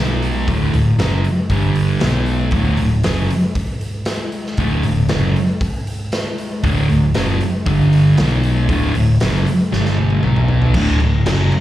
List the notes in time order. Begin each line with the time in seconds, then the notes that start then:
Already playing: B2 F#3 B3
0.00 B1
0.22 open hi-hat
0.48 D1 D2 A2 D3, kick, open hi-hat
0.73 D1 D2 A2, open hi-hat
0.98 F#1 F#2 C#3 F#3, snare, open hi-hat
1.24 open hi-hat
1.50 G1 G2 D3 G3, kick, open hi-hat
1.75 open hi-hat
2.00 B1 B2 F#3 B3, snare, open hi-hat
2.26 open hi-hat
2.51 D1 D2 A2 D3, kick, open hi-hat
2.77 D1 D2 A2, open hi-hat
3.04 F#1 F#2 C#3 F#3, snare, open hi-hat
3.30 open hi-hat
3.55 kick, open hi-hat
3.81 open hi-hat
4.05 snare, open hi-hat
4.32 open hi-hat
4.46 snare
4.57 D1 D2 A2 D3, kick, open hi-hat
4.83 D1 D2 A2, open hi-hat
5.09 F#1 F#2 C#3 F#3, snare, open hi-hat
5.36 open hi-hat
5.61 kick, open hi-hat
5.87 open hi-hat
6.12 snare, open hi-hat
6.38 open hi-hat
6.63 D1 D2 A2 D3, kick, open hi-hat
6.89 D1 D2 A2, open hi-hat
7.14 F#1 F#2 C#3 F#3, snare, open hi-hat
7.28 snare
7.41 open hi-hat
7.66 G1 G2 D3 G3, kick, open hi-hat
7.93 open hi-hat
8.17 B1 B2 F#3 B3, snare, open hi-hat
8.43 open hi-hat
8.69 D1 D2 A2 D3, kick, open hi-hat
8.95 D1 D2 A2, open hi-hat
9.20 F#1 F#2 C#3 F#3, snare, open hi-hat
9.35 snare
9.47 open hi-hat
9.72 G1 G2 D3 G3, snare
9.85 snare
9.97 high tom
10.10 high tom
10.22 B1 B2 F#3 B3, mid tom
10.36 mid tom
10.48 floor tom
10.62 floor tom
10.74 D1 D2 A2 D3, kick, crash
11.00 D1 D2 A2, crash
11.26 F#1 F#2 C#3 F#3, snare, crash
11.52 crash